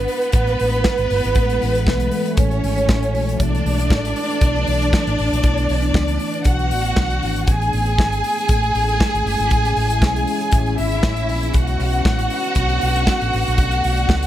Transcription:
Already playing: E3 G#3 A3 B3 E4 B4
0.08 open hi-hat
0.22 closed hi-hat
0.32 A1, kick, closed hi-hat
0.47 closed hi-hat
0.60 A1, open hi-hat
0.73 closed hi-hat
0.84 kick, snare
0.98 G#1, closed hi-hat
1.10 G1, open hi-hat
1.24 G#1, closed hi-hat
1.35 A1 F#4, kick, closed hi-hat
1.50 closed hi-hat
1.62 A1, open hi-hat
1.75 closed hi-hat
1.87 B1, kick, snare
2.00 closed hi-hat
2.11 open hi-hat
2.25 closed hi-hat
2.37 A1 C#4 C#5, kick, closed hi-hat
2.51 closed hi-hat
2.64 G#1, open hi-hat
2.78 closed hi-hat
2.89 A1, kick, snare
3.03 closed hi-hat
3.14 A#1, open hi-hat
3.29 closed hi-hat
3.40 B1 B3 D4 D5, kick, closed hi-hat
3.55 closed hi-hat
3.65 B1, open hi-hat
3.79 closed hi-hat
3.90 A1, kick, snare
4.05 closed hi-hat
4.16 open hi-hat
4.30 closed hi-hat
4.41 B1, kick, closed hi-hat
4.56 closed hi-hat
4.67 B1, open hi-hat
4.82 closed hi-hat
4.93 kick, snare
5.07 A1, closed hi-hat
5.19 A1, open hi-hat
5.32 A#1, closed hi-hat
5.43 B1, kick, closed hi-hat
5.58 closed hi-hat
5.69 B1, open hi-hat
5.82 closed hi-hat
5.94 C#2, kick, snare
6.08 closed hi-hat
6.19 open hi-hat
6.34 closed hi-hat
6.44 B1 F#4 F#5, kick, closed hi-hat
6.59 closed hi-hat
6.71 A1, open hi-hat
6.85 closed hi-hat
6.96 B1, kick, snare
7.10 closed hi-hat
7.23 G#1, open hi-hat
7.36 closed hi-hat
7.47 A1 G#3 A3 C#4 E4 G#4 G#5, kick, closed hi-hat
7.62 closed hi-hat
7.73 A1, open hi-hat
7.86 closed hi-hat
7.98 G#1, kick, snare
8.12 closed hi-hat
8.24 open hi-hat
8.38 closed hi-hat
8.48 A1, kick, closed hi-hat
8.63 closed hi-hat
8.75 A1, open hi-hat
8.89 closed hi-hat
9.00 kick, snare
9.14 G#1, closed hi-hat
9.26 G1, open hi-hat
9.39 G#1, closed hi-hat
9.50 A1 B3, kick, closed hi-hat
9.65 closed hi-hat
9.76 A1, open hi-hat
9.90 closed hi-hat
10.02 B1, kick, snare
10.16 closed hi-hat
10.27 open hi-hat
10.41 closed hi-hat
10.51 A1, kick, closed hi-hat
10.66 closed hi-hat
10.77 G#1 E4 E5, open hi-hat
10.92 closed hi-hat
11.03 A1, kick, snare
11.16 closed hi-hat
11.29 A#1, open hi-hat
11.43 closed hi-hat
11.54 B1 A3 D4 F#4 F#5, kick, closed hi-hat
11.67 closed hi-hat
11.80 B1, open hi-hat
11.93 closed hi-hat
12.05 A1, kick, snare
12.19 closed hi-hat
12.30 open hi-hat
12.44 closed hi-hat
12.55 B1, kick, closed hi-hat
12.69 closed hi-hat
12.81 B1, open hi-hat
12.96 closed hi-hat
13.07 kick, snare
13.21 A1, closed hi-hat
13.33 A1, open hi-hat
13.48 A#1, closed hi-hat
13.58 B1, kick, closed hi-hat
13.71 closed hi-hat
13.84 B1, open hi-hat
13.97 closed hi-hat
14.09 C#2, kick, snare
14.23 closed hi-hat

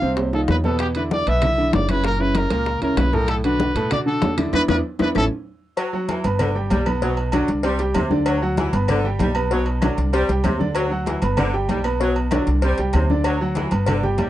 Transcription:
Already playing: F5
0.02 C2 C3 C4 C5, high bongo, high conga
0.17 high bongo, high conga, low timbale
0.33 D#3 D#4 F4 A4, high bongo, high conga, low timbale
0.48 E2 B4, high bongo, low bongo, high conga, low timbale, claves
0.64 B2 B3 A4 B4, high bongo, high conga, low timbale
0.79 G4, high bongo, high conga, high timbale, claves
0.95 D3 D4 E4 B4, high conga, high timbale
1.11 D5, high bongo, high conga, low timbale
1.27 B1 B2 B3 B4 E5, high conga, high timbale
1.42 D3 D4 E4, high bongo, high conga, low conga, high timbale, claves
1.58 D3 D4 E4, high conga
1.73 F#1 D5, high bongo, low bongo, high conga, high timbale, low timbale
1.88 C#3 C#4 E4 B4, high conga, high timbale, claves
2.04 A#2 A#3 A#4, high bongo, high conga, high timbale
2.19 C#3 C#4 E4 B4, high conga
2.35 A#4, high bongo, high conga, high timbale, low timbale, claves
2.50 C#2 A#2 A#3 A#4, high bongo, high conga, high timbale
2.66 high bongo, high conga
2.82 C#2 C#3 C#4 E4 A#4, high bongo, high conga, high timbale
2.97 B1 B4, high bongo, low bongo, high conga, high timbale, low timbale, claves
3.13 A2 A3 A4 A#4, high bongo, high conga
3.28 A4, high bongo, high conga, high timbale, claves
3.44 D3 D4 F#4 B4, high conga, high timbale
3.60 high bongo, high conga, low timbale
3.75 A2 B2 A3 A4, high conga, high timbale
3.91 D3 D4 F#4 D5, high bongo, high conga, low conga, high timbale, claves
4.06 D3 D4 F#4 A4, high conga
4.22 E2, high bongo, low bongo, high conga, high timbale, low timbale
4.37 D3 D4 E4, high conga, high timbale, claves
4.53 E2 B3 D4 E4 B4, low bongo, high conga, high timbale, claves
4.68 E2 B3 D4 E4 B4, low bongo, high conga, high timbale, claves
4.99 E2 B3 D4 E4 B4, low bongo, high conga, high timbale, claves
5.15 A1 A3 C#4 E4 A4, low bongo, high conga, high timbale, claves
5.77 F#3, cowbell, high conga, low agogo, claves
5.93 F#3 F#4 F#5, high conga
6.08 E3, cowbell, high conga, low timbale, low agogo
6.24 G1 B3 B4 B5, cowbell, low agogo
6.39 D3, cowbell, high conga, low conga, low agogo, claves
6.55 G3 G4 G5, high conga
6.70 B1 G3, cowbell, high conga, low timbale, low agogo
6.86 B3 B4 B5, high conga, low agogo, claves
7.02 B2 F#3 B3 B4, cowbell, high conga
7.17 high conga, low agogo
7.32 D3 F#3 D4 D5, cowbell, high conga, low timbale, low agogo, claves
7.48 C2, cowbell, high conga
7.63 G3 C4 C5 C6, cowbell, high conga, low agogo
7.79 G3 G4 G5, cowbell, high conga
7.94 D2 C3 C4 C5 C6, cowbell, high conga, low timbale, low agogo, claves
8.10 D3 D4 D5, high conga
8.26 F#3, cowbell, high conga, low agogo, claves
8.42 F#3 F#4 F#5, high conga
8.57 E3, cowbell, high conga, low timbale, low agogo
8.73 G1 B3 B4 B5, cowbell, low agogo
8.88 D3, cowbell, high conga, low conga, low agogo, claves
9.04 G3 G4 G5, high conga
9.19 B1 G3, cowbell, high conga, low timbale, low agogo
9.35 B3 B4 B5, low agogo, claves
9.51 B2 F#3 B3 B4, cowbell, high conga
9.66 high conga, low agogo
9.82 D3 F#3 D4 D5, cowbell, high conga, low timbale, low agogo, claves
9.97 C2, cowbell, high conga
10.13 G3 C4 C5 C6, cowbell, high conga, low agogo
10.29 C2 G3 G4 G5, cowbell, high conga
10.44 D2 C3 C4 C5 C6, cowbell, high conga, low timbale, low agogo, claves
10.60 D3 D4 D5, high conga
10.75 F#3, cowbell, high conga, low agogo, claves
10.91 F#3 F#4 F#5, high conga
11.06 E3, cowbell, high conga, low timbale, low agogo
11.22 G1 B3 B4 B5, cowbell, low agogo
11.37 D3, cowbell, high conga, low conga, low agogo, claves
11.53 G3 G4 G5, high conga
11.69 B1 G3, cowbell, high conga, low timbale, low agogo
11.84 B3 B4 B5, low agogo, claves
12.00 B2 F#3 B3 B4, cowbell, high conga
12.16 high conga, low agogo
12.31 D3 F#3 D4 D5, cowbell, high conga, low timbale, low agogo, claves
12.47 C2, cowbell, high conga
12.62 G3 C4 C5 C6, cowbell, high conga, low agogo
12.78 C2 G3 G4 G5, cowbell, high conga
12.93 D2 C3 C4 C5 C6, cowbell, high conga, low timbale, low agogo, claves
13.10 D3 D4 D5, high conga
13.24 F#3, cowbell, high conga, low agogo, claves
13.41 F#3 F#4 F#5, high conga
13.55 E3, cowbell, high conga, low timbale, low agogo
13.71 G1 B3 B4 B5, cowbell, low agogo
13.86 D3, cowbell, high conga, low conga, low agogo, claves
14.03 G3 G4 G5, high conga, low conga
14.18 B1 G3, cowbell, high conga, low timbale, low agogo

